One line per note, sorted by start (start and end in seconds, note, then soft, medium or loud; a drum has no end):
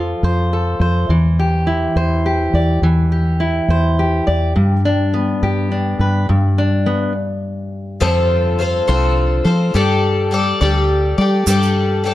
0.00 0.13 F2 medium
0.00 1.09 F3 medium
0.00 1.06 F4 medium
0.00 0.52 A4 soft
0.00 0.24 C5 soft
0.23 0.74 F2 medium
0.23 0.81 C5 medium
0.53 1.06 A4 soft
0.80 1.06 F2 medium
0.80 1.96 C5 soft
1.09 1.86 E2 medium
1.09 2.79 E3 medium
1.39 2.25 G4 soft
1.67 2.79 E4 medium
1.96 2.47 E2 medium
1.96 2.54 C5 medium
2.26 3.11 G4 soft
2.53 2.79 E2 medium
2.53 2.79 D5 soft
2.82 3.59 E2 medium
2.82 4.53 E3 medium
3.12 3.99 G4 soft
3.40 4.52 E4 medium
3.68 4.20 E2 medium
3.68 4.26 C5 medium
3.99 5.42 G4 soft
4.27 4.53 E2 medium
4.27 4.52 D5 soft
4.56 6.28 G2 medium
4.56 5.33 G2 medium
4.85 5.70 D4 medium
5.14 6.25 B3 medium
5.43 5.94 G2 medium
5.43 6.26 G4 medium
5.72 6.26 D4 soft
5.99 6.25 G2 medium
5.99 6.26 B4 soft
6.29 8.89 G2 medium
6.29 7.07 G2 medium
6.58 7.12 D4 medium
6.86 7.12 B3 medium
8.00 8.79 F2 medium
8.00 8.59 D3 medium
8.00 8.59 F3 medium
8.00 8.57 C4 medium
8.00 8.58 F4 medium
8.00 8.61 A4 medium
8.00 8.60 C5 medium
8.59 8.87 C4 medium
8.59 8.88 F4 medium
8.59 8.86 A4 medium
8.59 8.87 C5 medium
8.88 9.40 C2 medium
8.88 9.47 D3 medium
8.88 9.47 F3 soft
8.88 9.46 C4 medium
8.88 9.46 F4 medium
8.88 9.44 A4 medium
8.88 9.44 C5 medium
9.45 9.71 F3 medium
9.45 9.73 C4 soft
9.45 9.75 F4 soft
9.45 9.74 A4 medium
9.45 9.75 C5 medium
9.74 10.52 G2 medium
9.74 10.31 G3 medium
9.74 10.32 G4 medium
9.74 10.32 A4 medium
9.74 10.33 D5 medium
10.31 10.61 G3 medium
10.31 10.61 G4 medium
10.31 10.61 A4 medium
10.31 10.60 D5 medium
10.61 11.13 D2 medium
10.61 11.24 G3 medium
10.61 11.21 G4 medium
10.61 11.19 A4 medium
10.61 11.17 D5 medium
11.18 11.44 G3 medium
11.18 11.47 G4 soft
11.18 11.47 A4 soft
11.18 11.47 D5 medium
11.47 12.14 G2 medium
11.47 12.03 G3 medium
11.47 12.05 G4 medium
11.47 12.05 A4 medium
11.47 12.06 D5 medium
11.47 shaker medium
11.62 shaker soft
12.04 12.14 G3 medium
12.04 12.14 G4 medium
12.04 12.14 A4 medium
12.04 12.14 D5 medium